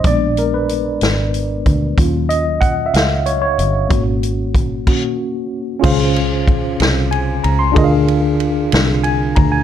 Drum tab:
CC |------|------|---x--|x-----|
RD |------|------|------|-xxxxx|
HH |xxxxxx|xxxxxx|xxx---|------|
SD |---o--|---o--|------|---o--|
BD |o----o|o-o---|o-oo--|o-o---|

CC |------|
RD |xxxxxx|
HH |------|
SD |---o--|
BD |o----o|